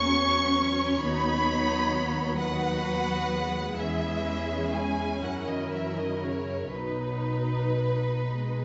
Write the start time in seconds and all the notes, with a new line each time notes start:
Already playing: E2 F#3 C#4 C#5 C#6
0.10 B3
0.56 C#4
0.99 D#2 F#3 B3 D#4 B5
1.48 D#4
1.93 B3
2.38 D#3 F#3 B3 F#4 B4 F#5
2.84 F#3
3.31 G#3
3.77 E2 E3 C#4 E4 G#4 E5
4.73 G#3 G#5
5.22 F#2 F#3 A#4 F#5
5.47 D#3 D#5
5.71 E3 E5
5.97 D#3 D#5
6.21 C#3 C#5
6.73 B1 B2 F#3 D#4 B4
8.29 G#3